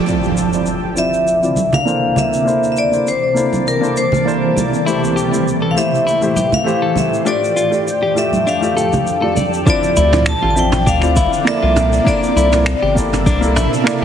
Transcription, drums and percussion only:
0.08 shaker
0.23 shaker
0.37 shaker
0.53 shaker
0.66 shaker
0.97 shaker
1.14 shaker
1.27 shaker
1.43 shaker
1.56 high conga, shaker
1.73 low conga, shaker
1.88 shaker
2.16 high conga, low conga, shaker
2.33 shaker
2.48 shaker
2.63 shaker
2.76 shaker
2.93 shaker
3.07 shaker
3.37 shaker
3.53 high conga, shaker
3.68 shaker
3.84 shaker
3.97 shaker
4.12 low conga, shaker
4.28 shaker
4.57 high conga, low conga, shaker
4.74 shaker
4.88 shaker
5.04 shaker
5.18 shaker
5.34 shaker
5.48 shaker
5.78 shaker
5.95 shaker
6.08 shaker
6.22 shaker
6.36 high conga, shaker
6.52 low conga, shaker
6.68 shaker
6.96 high conga, low conga, shaker
7.14 shaker
7.26 shaker
7.44 shaker
7.57 shaker
7.73 shaker
7.88 shaker
8.17 shaker
8.33 high conga, shaker
8.47 shaker
8.63 shaker
8.78 shaker
8.93 low conga, shaker
9.07 shaker
9.36 high conga, low conga, shaker
9.54 shaker
9.66 kick, open hi-hat, shaker
9.83 shaker
9.97 shaker
10.12 mid tom, open hi-hat, shaker
10.26 finger snap, shaker
10.57 shaker
10.71 mid tom, open hi-hat, shaker
10.86 kick, open hi-hat, shaker
11.02 finger snap, shaker
11.16 kick, open hi-hat, shaker
11.32 open hi-hat, shaker
11.47 finger snap, open hi-hat, shaker
11.76 mid tom, shaker
11.92 open hi-hat, shaker
12.06 kick, open hi-hat, shaker
12.23 shaker
12.37 shaker
12.52 mid tom, open hi-hat, shaker
12.66 finger snap, open hi-hat, shaker
12.96 kick, shaker
13.12 mid tom, open hi-hat, shaker
13.26 kick, open hi-hat, shaker
13.43 shaker
13.56 mid tom, open hi-hat, shaker
13.73 open hi-hat, shaker
13.87 finger snap, open hi-hat, shaker

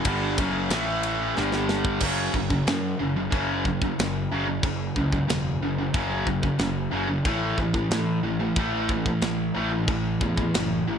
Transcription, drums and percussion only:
0.05 kick, ride
0.38 kick, ride
0.70 snare, ride
1.03 ride
1.37 snare
1.52 snare
1.69 snare
1.85 kick
2.00 kick, crash, china
2.34 kick
2.50 kick
2.67 snare, china
3.32 kick, china
3.65 kick
3.82 kick
3.99 snare, china
4.63 kick, china
4.96 kick
5.12 kick
5.29 snare, china
5.94 kick, china
6.27 kick
6.43 kick
6.59 snare, china
7.25 kick, china
7.58 kick
7.74 kick
7.91 snare, china
8.56 kick, china
8.89 kick
9.06 kick
9.21 snare, china
9.88 kick, china
10.21 kick
10.37 kick
10.54 snare, china

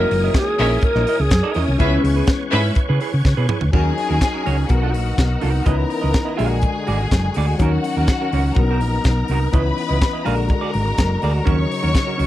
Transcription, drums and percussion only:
0.11 open hi-hat
0.34 kick, snare, closed hi-hat
0.59 open hi-hat
0.82 kick, closed hi-hat
0.95 snare
1.07 open hi-hat
1.31 kick, snare, closed hi-hat
1.54 open hi-hat
1.80 kick, closed hi-hat
2.05 open hi-hat
2.27 kick, snare, closed hi-hat
2.52 open hi-hat
2.75 kick, closed hi-hat
3.00 open hi-hat
3.25 kick, snare
3.49 mid tom
3.61 floor tom
3.73 kick, crash
3.98 open hi-hat
4.21 kick, snare, closed hi-hat
4.46 open hi-hat
4.69 kick, closed hi-hat
4.94 open hi-hat
5.18 kick, snare, closed hi-hat
5.41 open hi-hat
5.66 kick, closed hi-hat
5.90 open hi-hat
6.14 kick, snare, closed hi-hat
6.39 open hi-hat
6.62 kick, closed hi-hat
6.87 open hi-hat
7.11 kick, snare, closed hi-hat
7.34 open hi-hat
7.59 kick, closed hi-hat
7.84 open hi-hat
8.07 kick, snare, closed hi-hat
8.33 open hi-hat
8.55 kick, closed hi-hat
8.81 open hi-hat
9.04 kick, snare, closed hi-hat
9.28 open hi-hat
9.53 kick, closed hi-hat
9.78 open hi-hat
10.02 kick, snare, closed hi-hat
10.26 open hi-hat
10.49 kick, closed hi-hat
10.73 open hi-hat
10.98 kick, snare, closed hi-hat
11.22 open hi-hat
11.47 kick, closed hi-hat
11.71 open hi-hat
11.95 kick, snare, closed hi-hat
12.19 open hi-hat

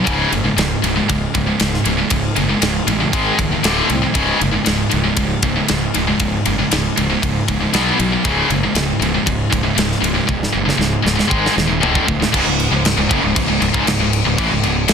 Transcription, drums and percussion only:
0.07 kick, ride
0.32 ride
0.58 snare, ride
0.84 ride
1.09 kick, ride
1.35 kick, ride
1.60 snare, ride
1.74 snare
1.85 ride
2.10 kick, ride
2.36 ride
2.62 snare, ride
2.88 ride
3.13 kick, ride
3.39 kick, ride
3.64 snare, ride
3.90 ride
4.15 kick, ride
4.41 ride
4.66 snare, ride
4.91 ride
5.17 kick, ride
5.42 kick, ride
5.68 snare, ride
5.94 ride
6.20 kick, ride
6.46 ride
6.72 snare, ride
6.97 ride
7.23 kick, ride
7.48 kick, ride
7.74 snare, ride
8.00 ride
8.25 kick, ride
8.50 ride
8.75 snare, ride
9.02 ride
9.27 kick, ride
9.53 kick, ride
9.78 snare, ride
9.92 snare
10.04 ride
10.29 kick, high tom
10.43 snare
10.69 snare
10.81 snare
11.07 snare
11.19 snare
11.31 kick
11.46 snare
11.58 snare
11.83 floor tom
11.95 kick
12.08 kick
12.22 snare
12.34 kick, crash
12.60 crash
12.85 snare, crash
13.11 kick, crash
13.36 kick, crash
13.62 crash
13.74 kick
13.87 snare, crash
14.13 crash
14.38 kick, crash
14.63 crash
14.88 snare, crash

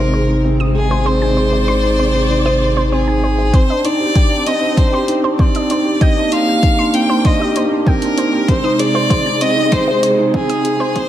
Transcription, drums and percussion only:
3.53 kick, closed hi-hat
3.85 closed hi-hat
4.15 kick, closed hi-hat
4.46 closed hi-hat
4.77 kick, closed hi-hat
5.08 closed hi-hat
5.39 kick
5.55 closed hi-hat
5.70 closed hi-hat
6.01 kick, closed hi-hat
6.32 closed hi-hat
6.63 kick, closed hi-hat
6.94 closed hi-hat
7.25 kick, closed hi-hat
7.56 closed hi-hat
7.87 kick
8.02 closed hi-hat
8.18 closed hi-hat
8.48 kick, closed hi-hat
8.79 closed hi-hat
9.10 kick, closed hi-hat
9.41 closed hi-hat
9.72 kick, closed hi-hat
10.03 closed hi-hat
10.34 kick
10.49 closed hi-hat
10.65 closed hi-hat
10.96 kick, closed hi-hat

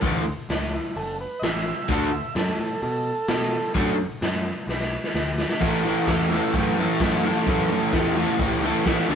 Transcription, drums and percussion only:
0.02 kick, open hi-hat
0.49 snare, open hi-hat
0.96 open hi-hat
1.43 snare, open hi-hat
1.89 kick, open hi-hat
2.35 snare, open hi-hat
2.82 open hi-hat
3.28 snare, open hi-hat
3.75 kick, open hi-hat
4.21 snare, open hi-hat
4.69 snare
4.80 snare
5.04 snare
5.15 snare
5.38 snare
5.49 snare
5.61 kick, crash
6.07 kick, snare, crash
6.54 kick, crash
7.00 kick, snare, crash
7.47 kick, crash
7.92 kick, snare, crash
8.39 kick, crash
8.85 kick, snare, crash

